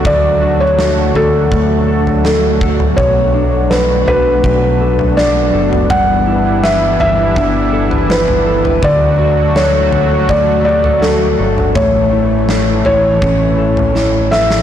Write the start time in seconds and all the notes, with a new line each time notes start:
Already playing: F#3 A3 D4 F#4 A4
0.05 D2 D3 D5, kick, floor tom
0.42 F#4
0.60 C#5
0.78 A4, snare
1.14 D2 F#4 A4, floor tom
1.51 D2 A3, kick
1.88 A4
2.07 floor tom
2.24 F#4 A4, snare
2.61 A4, kick
2.80 floor tom
2.96 B1 B2 B3 C#5, kick, floor tom
3.34 D4
3.71 A4 B4, snare
4.07 B1 D4 B4, floor tom
4.44 B1 F#3, kick
4.81 A4
4.99 floor tom
5.17 D4 D5, snare
5.53 F#1 A4
5.73 floor tom
5.90 G1 E3 G3 E4 F#5, kick, floor tom
6.27 E4
6.63 B4 E5, snare
7.00 G1 E4 E5, floor tom
7.36 G1 D4, kick
7.73 A4
7.91 B4, floor tom
8.10 E4 B4, snare
8.28 floor tom
8.46 A4
8.64 B4, floor tom
8.82 D2 D3 F#3 A3 F#4 D5, kick, floor tom
9.19 F#4
9.56 A4 C#5, snare
9.92 D2 F#4, floor tom
10.29 D2 A3 D5, kick
10.65 G4 D5
10.84 A4, floor tom
11.02 F#4 A4, snare
11.39 G1 A4
11.58 floor tom
11.75 A1 E3 A3 C#5, kick, floor tom
12.12 E4
12.49 A4, snare
12.85 A1 E4 C#5, floor tom
13.22 A1 C#4, kick
13.58 A4
13.77 floor tom
13.95 E4, snare
14.31 A4 E5, snare
14.50 snare